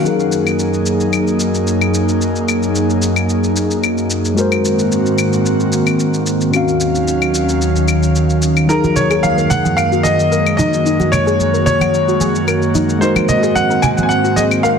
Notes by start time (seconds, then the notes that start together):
0.02 F#2 F#3 A#3 D#4 G#4, shaker
0.08 A#4
0.20 shaker
0.32 shaker
0.47 claves, shaker
0.59 shaker
0.74 shaker
0.86 shaker
1.00 shaker
1.13 claves, shaker
1.27 shaker
1.40 shaker
1.54 shaker
1.67 shaker
1.81 claves, shaker
1.94 shaker
2.09 shaker
2.21 shaker
2.36 shaker
2.48 claves, shaker
2.63 shaker
2.75 shaker
2.90 shaker
3.02 shaker
3.16 claves, shaker
3.29 shaker
3.44 shaker
3.56 shaker
3.71 shaker
3.84 claves, shaker
3.98 shaker
4.10 shaker
4.25 shaker
4.35 G#2 D#3 G#3 A#3 C4 F#4 A#4, shaker
4.40 C5
4.52 claves, shaker
4.65 shaker
4.79 shaker
4.92 shaker
5.06 shaker
5.18 claves, shaker
5.33 shaker
5.46 shaker
5.60 shaker
5.72 shaker
5.87 claves, shaker
5.99 shaker
6.14 shaker
6.26 shaker
6.41 shaker
6.51 D#2 D#3 F#3 C#4 F#4 F5, claves, shaker
6.56 F5
6.68 shaker
6.81 shaker
6.95 shaker
7.08 shaker
7.22 claves, shaker
7.35 shaker
7.49 shaker
7.62 shaker
7.76 shaker
7.88 claves, shaker
8.03 shaker
8.16 shaker
8.30 shaker
8.42 shaker
8.57 claves, shaker
8.67 F#2 F#3 G#3 A#3 D#4 F#4 G#4 A#4, shaker
8.73 A#4
8.84 F#4, high conga, shaker
8.96 C#5, low conga, shaker
9.10 G#4, claves, shaker
9.23 F5, high conga, shaker
9.38 A#4, shaker
9.50 F#5, low conga, shaker
9.65 F#5, high conga, shaker
9.77 F5, claves, shaker
9.92 F#4, shaker
10.03 G#4 D#5, high conga, shaker
10.19 shaker
10.32 A#4, shaker
10.46 claves, shaker
10.57 D#4 D#5, high conga, low conga, shaker
10.73 shaker
10.86 D#4, shaker
11.00 F#4, high conga, shaker
11.12 C#5, low conga, claves, shaker
11.27 G#4, shaker
11.40 high conga, shaker
11.54 A#4, shaker
11.66 C#5, low conga, shaker
11.81 F#5, high conga, claves, shaker
11.94 shaker
12.08 F#4, shaker
12.21 G#4, high conga, shaker
12.35 shaker
12.47 A#4, claves, shaker
12.62 shaker
12.74 D#4, high conga, shaker
12.89 shaker
12.99 G#2 G#3 C4 D#4 F#4 A#4 C5, shaker
13.05 C5
13.16 F#4, high conga, claves, shaker
13.29 D#5, low conga, shaker
13.43 G#4, shaker
13.55 F#5, high conga, shaker
13.70 A#4, shaker
13.82 G#5, low conga, claves, shaker
13.97 F#5, high conga, shaker
14.03 G#5
14.09 F#5, shaker
14.24 F#4, shaker
14.36 G#4 D#5, high conga, shaker
14.51 claves, shaker
14.63 A#4 F5, shaker